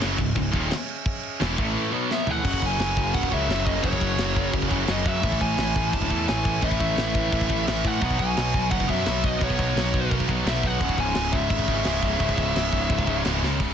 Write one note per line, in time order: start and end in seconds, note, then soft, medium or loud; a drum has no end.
0.00 0.18 F#1 loud
0.00 0.18 F#2 medium
0.00 0.18 C#3 loud
0.00 0.18 C#3 medium
0.00 0.18 F#3 loud
0.00 0.18 F#3 medium
0.00 1.53 C#4 medium
0.00 1.53 G#4 medium
0.00 1.53 D#5 medium
0.00 1.53 E5 medium
0.00 snare loud
0.00 crash medium
0.18 0.35 C#1 medium
0.18 0.32 C#2 medium
0.18 0.33 C#2 medium
0.18 0.33 G#2 medium
0.18 kick medium
0.18 crash medium
0.35 0.52 C#1 medium
0.35 0.50 C#2 medium
0.35 0.51 C#2 medium
0.35 0.50 G#2 medium
0.35 0.51 G#2 medium
0.35 kick medium
0.35 crash medium
0.51 0.70 D#1 loud
0.51 0.69 D#2 medium
0.51 0.71 D#2 medium
0.51 0.70 A#2 loud
0.51 0.70 D#3 loud
0.51 kick loud
0.51 crash medium
0.56 0.72 A#2 medium
0.56 0.72 D#3 loud
0.71 snare loud
0.71 crash medium
0.89 crash medium
1.05 kick loud
1.05 crash medium
1.23 crash medium
1.40 1.57 E1 loud
1.40 1.56 E2 medium
1.40 1.57 E2 medium
1.40 1.58 B2 loud
1.40 1.58 B2 medium
1.40 1.57 E3 loud
1.40 1.58 E3 loud
1.40 snare loud
1.40 crash medium
1.57 1.74 A1 loud
1.57 1.92 A2 medium
1.57 1.92 A2 loud
1.57 1.93 E3 medium
1.57 1.93 E3 loud
1.57 1.92 A3 medium
1.57 1.93 A3 loud
1.57 1.92 E4 medium
1.57 1.92 B4 medium
1.57 1.93 A5 medium
1.57 kick loud
1.57 crash medium
1.92 2.25 B2 loud
1.92 2.27 B2 medium
1.92 2.27 F#3 loud
1.92 2.28 F#3 medium
1.92 2.27 B3 medium
1.92 2.27 B3 loud
1.92 2.28 B3 medium
1.92 2.27 F#4 medium
1.92 2.27 C#5 medium
1.92 2.27 B5 medium
2.11 2.31 E5 medium
2.11 snare medium
2.25 2.43 A2 medium
2.25 2.43 A2 loud
2.25 2.44 E3 medium
2.25 2.43 E3 loud
2.25 2.45 A3 medium
2.25 2.42 C#4 medium
2.25 2.42 G#4 medium
2.25 2.44 D#5 medium
2.25 2.43 E5 medium
2.25 floor tom medium
2.29 2.44 A3 loud
2.29 2.64 F#5 loud
2.43 2.61 F#1 medium
2.43 3.65 F#2 medium
2.43 3.30 F#2 medium
2.43 3.65 C#3 medium
2.43 3.31 C#3 medium
2.43 5.20 F#3 medium
2.43 3.66 F#3 medium
2.43 3.66 A#3 medium
2.43 5.20 C#4 medium
2.43 3.67 C#4 loud
2.43 3.65 F#4 loud
2.43 5.20 G#4 medium
2.43 5.21 A#4 medium
2.43 kick loud
2.43 crash loud
2.43 crash medium
2.47 3.29 F#3 loud
2.53 kick medium
2.62 2.78 F#1 medium
2.62 3.18 G#5 loud
2.62 kick medium
2.62 crash medium
2.78 2.94 F#1 loud
2.78 snare loud
2.78 crash medium
2.97 3.13 F#1 medium
2.97 kick medium
2.97 crash medium
3.14 3.30 C#1 medium
3.14 3.33 F#5 loud
3.14 kick loud
3.14 crash medium
3.23 kick medium
3.30 3.47 C#2 medium
3.30 3.46 F#2 medium
3.30 3.48 C#3 medium
3.30 3.47 F#3 medium
3.30 3.66 E5 medium
3.30 kick medium
3.30 crash medium
3.47 3.80 F#1 medium
3.47 3.80 F#2 medium
3.47 3.82 C#3 medium
3.47 snare loud
3.47 crash medium
3.51 3.84 F#3 medium
3.66 3.81 F#2 medium
3.66 3.82 C#3 medium
3.66 3.82 F#3 medium
3.66 3.83 A#3 medium
3.66 3.83 C#4 loud
3.66 3.83 F#4 medium
3.66 3.84 D#5 medium
3.66 kick medium
3.66 crash medium
3.82 3.99 F#1 loud
3.82 4.69 F#2 medium
3.82 5.04 F#2 medium
3.82 5.04 C#3 medium
3.82 4.70 C#3 medium
3.82 5.05 F#3 medium
3.82 4.67 F#3 loud
3.82 5.05 A#3 loud
3.82 5.06 C#4 medium
3.82 5.04 F#4 medium
3.82 4.49 C#5 medium
3.82 kick loud
3.82 crash medium
3.93 kick medium
4.01 4.17 F#1 medium
4.01 kick medium
4.01 crash medium
4.18 4.49 F#1 loud
4.18 snare loud
4.18 crash medium
4.36 kick medium
4.36 crash medium
4.53 4.69 F#1 loud
4.53 kick loud
4.53 crash medium
4.62 kick medium
4.68 4.86 F#1 medium
4.68 4.85 F#2 medium
4.68 4.86 C#3 medium
4.68 4.86 F#3 medium
4.68 kick medium
4.68 crash medium
4.86 5.04 F#1 loud
4.86 5.20 F#2 medium
4.86 5.22 C#3 medium
4.86 5.23 F#3 medium
4.86 snare loud
4.86 crash medium
4.92 5.07 D#5 medium
5.05 5.21 F#2 loud
5.05 5.23 F#2 medium
5.05 5.23 C#3 medium
5.05 5.23 F#3 medium
5.05 5.23 A#3 medium
5.05 5.26 C#4 medium
5.05 5.22 F#4 medium
5.05 5.42 E5 loud
5.05 kick medium
5.05 crash medium
5.20 5.39 A1 loud
5.20 6.08 A2 medium
5.20 6.44 A2 medium
5.20 6.09 E3 medium
5.20 6.45 E3 loud
5.20 6.45 A3 loud
5.20 8.00 B4 medium
5.20 kick loud
5.20 crash medium
5.25 6.08 A3 loud
5.25 8.01 A3 medium
5.25 6.46 C#4 medium
5.25 8.00 E4 medium
5.25 6.46 E4 medium
5.25 6.45 A4 medium
5.25 10.78 C#5 medium
5.32 kick medium
5.41 5.57 A1 medium
5.41 5.94 G#5 loud
5.41 kick medium
5.41 crash medium
5.57 5.73 A1 medium
5.57 snare loud
5.57 crash loud
5.76 5.92 A1 medium
5.76 kick medium
5.76 crash medium
5.93 6.09 E1 medium
5.93 6.26 A5 loud
5.93 kick loud
5.93 crash medium
6.02 kick medium
6.10 6.26 E2 medium
6.10 6.26 A2 medium
6.10 6.27 E3 medium
6.10 6.27 A3 medium
6.10 kick medium
6.10 crash medium
6.27 6.59 A1 medium
6.27 6.60 A2 medium
6.27 6.62 E3 medium
6.27 6.63 A3 medium
6.27 6.64 G#5 loud
6.27 snare loud
6.27 crash medium
6.45 6.62 A2 medium
6.45 6.62 E3 medium
6.45 6.63 A3 medium
6.45 6.63 C#4 medium
6.45 6.63 E4 medium
6.45 6.62 A4 medium
6.45 kick medium
6.45 crash medium
6.61 6.78 A1 loud
6.61 7.48 A2 medium
6.61 7.84 A2 loud
6.61 7.84 E3 loud
6.61 7.48 E3 medium
6.61 7.85 A3 loud
6.61 7.46 A3 loud
6.61 7.84 C#4 medium
6.61 7.64 E5 loud
6.61 kick loud
6.61 crash medium
6.66 7.83 E4 medium
6.66 7.83 A4 loud
6.71 kick medium
6.80 6.96 A1 medium
6.80 kick medium
6.80 crash medium
6.97 7.29 A1 medium
6.97 snare loud
6.97 crash medium
7.15 kick medium
7.15 crash medium
7.32 7.48 A1 medium
7.32 kick loud
7.32 crash medium
7.41 kick medium
7.47 7.66 A1 medium
7.47 7.65 A2 medium
7.47 7.66 E3 medium
7.47 7.65 A3 medium
7.47 kick medium
7.47 crash medium
7.66 7.83 A1 medium
7.66 8.00 A2 medium
7.66 8.02 E3 medium
7.66 8.02 A3 medium
7.66 7.87 E5 medium
7.66 snare loud
7.66 crash medium
7.84 8.00 A2 medium
7.84 8.01 E3 medium
7.84 8.02 A3 medium
7.84 8.02 C#4 medium
7.84 8.01 E4 medium
7.84 8.01 A4 medium
7.84 8.22 F#5 loud
7.84 kick medium
7.84 crash medium
8.00 8.18 B1 loud
8.00 8.88 B2 medium
8.00 9.23 B2 medium
8.00 9.23 F#3 loud
8.00 8.88 F#3 medium
8.00 10.78 B3 medium
8.00 9.24 B3 medium
8.00 8.87 B3 loud
8.00 9.24 D#4 medium
8.00 10.78 F#4 medium
8.00 13.56 F#5 medium
8.00 kick loud
8.00 crash medium
8.04 9.23 F#4 loud
8.04 9.22 B4 medium
8.11 kick medium
8.19 8.35 B1 medium
8.19 8.68 G#5 loud
8.19 kick medium
8.19 crash medium
8.37 8.53 B1 loud
8.37 snare loud
8.37 crash medium
8.54 8.70 B1 loud
8.54 kick medium
8.54 crash medium
8.71 8.87 F#1 medium
8.71 8.90 F#5 loud
8.71 kick loud
8.71 crash medium
8.80 kick medium
8.88 9.05 F#2 medium
8.88 9.05 B2 medium
8.88 9.06 F#3 medium
8.88 9.05 B3 medium
8.88 9.26 E5 medium
8.88 kick medium
8.88 crash medium
9.06 9.38 B1 loud
9.06 9.38 B2 medium
9.06 9.41 F#3 medium
9.06 snare loud
9.06 crash medium
9.10 9.42 B3 medium
9.23 9.39 B2 medium
9.23 9.40 F#3 medium
9.23 9.41 B3 medium
9.23 9.41 D#4 medium
9.23 9.41 F#4 medium
9.23 9.40 B4 medium
9.23 9.43 D#5 medium
9.23 kick medium
9.23 crash medium
9.40 9.57 B1 loud
9.40 10.27 B2 medium
9.40 10.62 B2 medium
9.40 10.63 F#3 loud
9.40 10.28 F#3 medium
9.40 10.63 B3 medium
9.40 10.63 D#4 loud
9.40 10.63 F#4 loud
9.40 10.62 B4 loud
9.40 10.12 C#5 medium
9.40 kick loud
9.40 crash medium
9.44 10.27 B3 loud
9.50 kick medium
9.59 9.75 B1 loud
9.59 kick medium
9.59 crash medium
9.76 10.07 B1 medium
9.76 snare loud
9.76 crash medium
9.94 kick medium
9.94 crash medium
10.11 10.27 B1 medium
10.11 kick loud
10.11 crash medium
10.20 kick medium
10.28 10.44 B1 medium
10.28 10.43 B2 medium
10.28 10.46 F#3 medium
10.28 10.45 B3 loud
10.28 kick medium
10.28 crash medium
10.44 10.62 B1 loud
10.44 10.79 B2 medium
10.44 10.81 F#3 medium
10.44 10.81 B3 medium
10.44 snare loud
10.44 crash medium
10.48 10.64 E5 loud
10.63 10.79 B1 loud
10.63 10.78 B2 medium
10.63 10.79 F#3 medium
10.63 10.81 B3 medium
10.63 10.81 D#4 medium
10.63 10.80 F#4 medium
10.63 10.80 B4 medium
10.63 kick medium
10.63 crash medium
10.67 11.01 F#5 loud
10.79 10.97 C#1 medium
10.79 12.05 C#2 loud
10.79 11.70 C#2 medium
10.79 12.01 G#2 loud
10.79 11.67 G#2 medium
10.79 12.03 C#3 medium
10.79 12.03 G#3 loud
10.79 13.57 C#4 medium
10.79 12.01 E4 loud
10.79 13.57 G#4 medium
10.79 13.56 E5 medium
10.79 kick loud
10.79 crash medium
10.83 11.66 C#3 loud
10.89 kick medium
10.98 11.14 C#1 medium
10.98 11.35 G#5 loud
10.98 kick medium
10.98 crash medium
11.15 11.32 C#1 medium
11.15 snare loud
11.15 crash medium
11.32 11.49 C#1 loud
11.32 11.49 E5 medium
11.32 kick medium
11.32 crash medium
11.50 11.66 G#1 loud
11.50 13.21 E5 medium
11.50 kick loud
11.50 crash medium
11.59 kick medium
11.67 11.84 G#1 medium
11.67 11.83 C#2 medium
11.67 11.85 G#2 medium
11.67 11.87 C#3 medium
11.67 kick medium
11.67 crash medium
11.83 12.17 C#1 loud
11.83 12.16 C#2 medium
11.83 12.18 G#2 medium
11.83 snare loud
11.83 crash medium
11.88 12.20 C#3 medium
12.02 12.18 G#2 medium
12.02 12.20 C#3 medium
12.02 12.20 G#3 loud
12.02 12.22 E4 loud
12.02 kick medium
12.02 crash medium
12.06 12.18 C#2 medium
12.17 12.36 C#1 medium
12.17 13.05 C#2 medium
12.17 13.41 C#2 medium
12.17 13.06 G#2 medium
12.17 13.41 G#2 medium
12.17 13.42 C#3 medium
12.17 13.41 G#3 medium
12.17 kick loud
12.17 crash medium
12.21 13.04 C#3 loud
12.21 13.41 E4 medium
12.29 kick medium
12.38 12.54 C#1 medium
12.38 kick medium
12.38 crash medium
12.55 12.86 C#1 loud
12.55 snare loud
12.55 crash medium
12.73 kick medium
12.73 crash medium
12.90 13.06 C#1 loud
12.90 kick loud
12.90 crash medium
12.99 kick medium
13.05 13.23 C#1 medium
13.05 13.24 G#2 medium
13.05 13.23 C#3 medium
13.05 kick medium
13.05 crash medium
13.10 13.22 C#2 medium
13.23 13.41 C#1 medium
13.23 13.58 C#2 medium
13.23 13.59 G#2 medium
13.23 13.60 C#3 medium
13.23 snare loud
13.23 crash medium
13.42 13.58 C#2 medium
13.42 13.61 C#2 medium
13.42 13.60 G#2 medium
13.42 13.60 C#3 medium
13.42 13.59 G#3 medium
13.42 13.59 E4 medium
13.42 snare medium
13.60 13.74 C#1 medium
13.60 13.74 C#2 medium
13.60 13.74 G#2 medium
13.60 13.74 C#3 medium
13.60 kick loud
13.60 open hi-hat medium